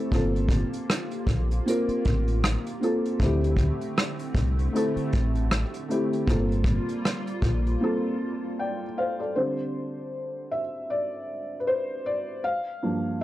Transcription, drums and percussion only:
0.12 kick, closed hi-hat
0.36 closed hi-hat
0.49 kick, closed hi-hat
0.73 closed hi-hat
0.90 cross-stick, closed hi-hat
1.11 closed hi-hat
1.27 kick, closed hi-hat
1.51 closed hi-hat
1.68 closed hi-hat
1.89 closed hi-hat
2.05 kick, closed hi-hat
2.28 closed hi-hat
2.44 cross-stick, closed hi-hat
2.66 closed hi-hat
2.83 closed hi-hat
3.05 closed hi-hat
3.20 kick, closed hi-hat
3.44 closed hi-hat
3.57 kick, closed hi-hat
3.81 closed hi-hat
3.98 cross-stick, closed hi-hat
4.19 closed hi-hat
4.35 kick, closed hi-hat
4.59 closed hi-hat
4.76 closed hi-hat
4.97 closed hi-hat
5.12 kick, closed hi-hat
5.35 closed hi-hat
5.51 cross-stick, closed hi-hat
5.74 closed hi-hat
5.90 closed hi-hat
6.13 closed hi-hat
6.28 kick, closed hi-hat
6.52 closed hi-hat
6.64 kick, closed hi-hat
6.89 closed hi-hat
7.05 cross-stick, closed hi-hat
7.27 closed hi-hat
7.42 kick, closed hi-hat
7.67 closed hi-hat

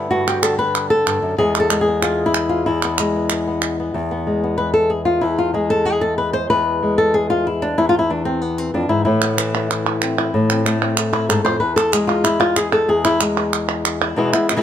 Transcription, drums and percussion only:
0.28 clap
0.43 clap
0.75 clap
1.07 clap
1.55 clap
1.70 clap
2.02 clap
2.34 clap
2.82 clap
2.98 clap
3.30 clap
3.62 clap
9.22 clap
9.38 clap
9.71 clap
10.02 clap
10.50 clap
10.66 clap
10.82 clap
10.97 clap
11.13 clap
11.30 clap
11.78 clap
11.93 clap
12.09 clap
12.25 clap
12.41 clap
12.56 clap
12.72 clap
13.05 clap
13.21 clap
13.37 clap
13.53 clap
13.85 clap
14.02 clap
14.33 clap
14.49 clap

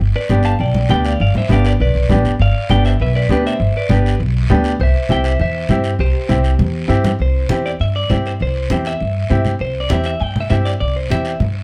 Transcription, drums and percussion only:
0.28 high conga, short guiro
0.43 short guiro
0.59 long guiro
0.74 high conga
0.89 high conga, short guiro
1.05 short guiro
1.20 long guiro
1.35 low conga
1.49 high conga, short guiro
1.65 short guiro
1.80 long guiro
2.09 high conga, low conga, short guiro
2.25 short guiro
2.39 long guiro
2.69 high conga, short guiro
2.85 short guiro
3.00 long guiro
3.29 high conga, short guiro
3.47 short guiro
3.60 long guiro
3.89 high conga, short guiro
4.06 short guiro
4.20 long guiro
4.50 high conga, low conga, short guiro
4.64 short guiro
4.80 long guiro
5.09 high conga, short guiro
5.24 short guiro
5.40 long guiro
5.69 high conga, short guiro
5.84 short guiro
5.99 long guiro
6.29 high conga, short guiro
6.44 short guiro
6.59 high conga, long guiro
6.90 short guiro
7.04 low conga, short guiro
7.19 high conga, long guiro
7.49 high conga, short guiro
7.66 short guiro
7.80 high conga, long guiro
8.10 high conga, short guiro
8.26 short guiro
8.40 high conga, long guiro
8.70 high conga, short guiro
8.85 short guiro
9.00 high conga, long guiro
9.30 high conga, short guiro
9.45 high conga, short guiro
9.59 high conga, long guiro
9.89 high conga, short guiro
10.04 short guiro
10.20 high conga, long guiro
10.36 high conga
10.50 high conga, short guiro
10.66 short guiro
10.81 high conga, long guiro
11.10 high conga, short guiro
11.25 short guiro
11.40 high conga, long guiro

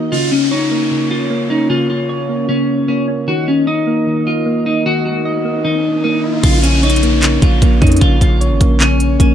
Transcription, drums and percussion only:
6.43 kick, closed hi-hat, crash
6.64 closed hi-hat
6.83 closed hi-hat
6.90 closed hi-hat
6.96 closed hi-hat
7.03 closed hi-hat
7.22 clap, closed hi-hat
7.42 kick, closed hi-hat
7.62 kick, closed hi-hat
7.82 kick, closed hi-hat
7.87 closed hi-hat
7.92 closed hi-hat
7.97 closed hi-hat
8.01 kick, closed hi-hat
8.21 kick, closed hi-hat
8.41 closed hi-hat
8.61 kick, closed hi-hat
8.80 clap, closed hi-hat
9.00 closed hi-hat
9.20 kick, closed hi-hat

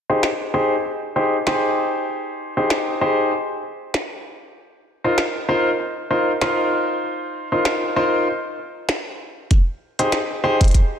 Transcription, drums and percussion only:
0.23 snare
1.47 snare
2.70 snare
3.94 snare
5.18 snare
6.41 snare
7.65 snare
8.89 snare
9.51 kick, closed hi-hat
9.99 closed hi-hat
10.12 snare, closed hi-hat
10.61 kick, closed hi-hat
10.64 closed hi-hat
10.68 closed hi-hat
10.71 kick, closed hi-hat
10.75 closed hi-hat

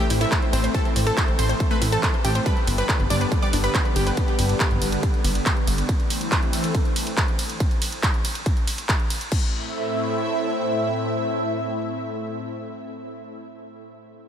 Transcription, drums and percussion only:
0.10 open hi-hat, ride
0.21 closed hi-hat
0.32 kick, clap, closed hi-hat, ride
0.42 closed hi-hat
0.53 open hi-hat, ride
0.64 closed hi-hat
0.74 kick, closed hi-hat, ride
0.85 closed hi-hat
0.96 open hi-hat, ride
1.07 closed hi-hat
1.17 kick, clap, closed hi-hat, ride
1.28 closed hi-hat
1.39 open hi-hat, ride
1.50 closed hi-hat
1.60 kick, closed hi-hat, ride
1.71 closed hi-hat
1.82 open hi-hat, ride
1.92 closed hi-hat
2.03 kick, clap, closed hi-hat, ride
2.14 closed hi-hat
2.25 open hi-hat, ride
2.35 closed hi-hat
2.46 kick, closed hi-hat, ride
2.57 closed hi-hat
2.67 open hi-hat, ride
2.78 closed hi-hat
2.89 kick, clap, closed hi-hat, ride
3.00 closed hi-hat
3.10 open hi-hat, ride
3.21 closed hi-hat
3.32 kick, closed hi-hat, ride
3.42 closed hi-hat
3.53 open hi-hat, ride
3.64 closed hi-hat
3.75 kick, clap, closed hi-hat, ride
3.85 closed hi-hat
3.96 open hi-hat, ride
4.07 closed hi-hat
4.17 kick, closed hi-hat, ride
4.28 closed hi-hat
4.39 open hi-hat, ride
4.49 closed hi-hat
4.60 kick, clap, closed hi-hat, ride
4.71 closed hi-hat
4.82 open hi-hat, ride
4.92 closed hi-hat
5.03 kick, closed hi-hat, ride
5.14 closed hi-hat
5.25 open hi-hat, ride
5.35 closed hi-hat
5.46 kick, clap, closed hi-hat, ride
5.57 closed hi-hat
5.67 open hi-hat, ride
5.78 closed hi-hat
5.89 kick, closed hi-hat, ride
6.00 closed hi-hat
6.10 open hi-hat, ride
6.21 closed hi-hat
6.32 kick, clap, closed hi-hat, ride
6.43 closed hi-hat
6.53 open hi-hat, ride
6.64 closed hi-hat
6.75 kick, closed hi-hat, ride
6.85 closed hi-hat
6.96 open hi-hat, ride
7.07 closed hi-hat
7.17 kick, clap, closed hi-hat, ride
7.28 closed hi-hat
7.39 open hi-hat, ride
7.50 closed hi-hat
7.60 kick, closed hi-hat, ride
7.71 closed hi-hat
7.82 open hi-hat, ride
7.93 closed hi-hat
8.03 kick, clap, closed hi-hat, ride
8.14 closed hi-hat
8.25 open hi-hat, ride
8.35 closed hi-hat
8.46 kick, closed hi-hat, ride
8.57 closed hi-hat
8.67 open hi-hat, ride
8.78 closed hi-hat
8.89 kick, clap, closed hi-hat, ride
9.00 closed hi-hat
9.10 open hi-hat, ride
9.21 closed hi-hat
9.32 kick, crash

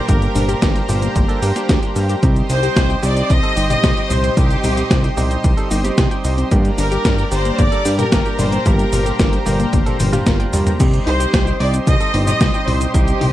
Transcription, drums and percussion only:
0.08 kick, closed hi-hat, cabasa
0.22 closed hi-hat, cabasa
0.35 open hi-hat, high tom, cabasa
0.49 closed hi-hat, cabasa
0.62 kick, snare, closed hi-hat, cabasa
0.76 closed hi-hat, cabasa
0.89 open hi-hat, high tom, cabasa
1.02 closed hi-hat, cabasa
1.16 kick, closed hi-hat, cabasa
1.29 closed hi-hat, cabasa
1.43 open hi-hat, cabasa
1.56 snare, closed hi-hat, cabasa
1.69 kick, snare, closed hi-hat, cabasa
1.83 closed hi-hat, cabasa
1.96 open hi-hat, cabasa
2.10 closed hi-hat, cabasa
2.23 kick, closed hi-hat, cabasa
2.36 closed hi-hat, cabasa
2.50 open hi-hat, cabasa
2.63 closed hi-hat, cabasa
2.76 kick, snare, closed hi-hat, cabasa
2.90 cabasa
3.03 open hi-hat, cabasa
3.17 closed hi-hat, cabasa
3.30 kick, closed hi-hat, cabasa
3.43 closed hi-hat, cabasa
3.57 open hi-hat, cabasa
3.70 closed hi-hat, high tom, cabasa
3.84 kick, snare, closed hi-hat, cabasa
3.97 cabasa
4.10 open hi-hat, high tom, cabasa
4.24 closed hi-hat, cabasa
4.37 kick, closed hi-hat, cabasa
4.50 closed hi-hat, cabasa
4.64 open hi-hat, high tom, cabasa
4.77 closed hi-hat, cabasa
4.91 kick, snare, closed hi-hat, cabasa
5.04 closed hi-hat, cabasa
5.18 open hi-hat, high tom, cabasa
5.31 closed hi-hat, cabasa
5.44 kick, closed hi-hat, cabasa
5.58 closed hi-hat, cabasa
5.71 open hi-hat, cabasa
5.84 snare, closed hi-hat, cabasa
5.98 kick, snare, closed hi-hat, cabasa
6.11 closed hi-hat, cabasa
6.25 open hi-hat, cabasa
6.38 closed hi-hat, cabasa
6.51 kick, closed hi-hat, cabasa
6.65 closed hi-hat, cabasa
6.78 open hi-hat, cabasa
6.92 closed hi-hat, cabasa
7.05 kick, snare, closed hi-hat, cabasa
7.18 cabasa
7.32 open hi-hat, cabasa
7.45 closed hi-hat, cabasa
7.59 kick, closed hi-hat, cabasa
7.72 closed hi-hat, cabasa
7.85 open hi-hat, cabasa
7.99 closed hi-hat, high tom, cabasa
8.12 kick, snare, closed hi-hat, cabasa
8.26 cabasa
8.39 open hi-hat, high tom, cabasa
8.52 closed hi-hat, cabasa
8.66 kick, closed hi-hat, cabasa
8.79 closed hi-hat, cabasa
8.93 open hi-hat, high tom, cabasa
9.06 closed hi-hat, cabasa
9.19 kick, snare, closed hi-hat, cabasa
9.33 closed hi-hat, cabasa
9.46 open hi-hat, high tom, cabasa
9.60 closed hi-hat, cabasa
9.73 kick, closed hi-hat, high tom, cabasa
9.86 closed hi-hat, high tom, cabasa
10.00 open hi-hat, high tom, cabasa
10.13 snare, closed hi-hat, mid tom, cabasa
10.26 kick, snare, closed hi-hat, mid tom, cabasa
10.40 closed hi-hat, cabasa
10.53 mid tom, open hi-hat, cabasa
10.67 closed hi-hat, mid tom, cabasa
10.80 kick, closed hi-hat, crash, cabasa
10.94 closed hi-hat, cabasa
11.07 open hi-hat
11.20 closed hi-hat, cabasa
11.34 kick, snare, closed hi-hat, cabasa
11.47 cabasa
11.60 open hi-hat
11.74 closed hi-hat, cabasa
11.87 kick, closed hi-hat, cabasa
12.01 closed hi-hat, cabasa
12.14 open hi-hat
12.27 closed hi-hat, high tom, cabasa
12.41 kick, snare, closed hi-hat, cabasa
12.54 cabasa
12.68 open hi-hat, high tom
12.81 closed hi-hat, cabasa
12.94 kick, closed hi-hat, cabasa
13.08 closed hi-hat, cabasa
13.21 open hi-hat, high tom

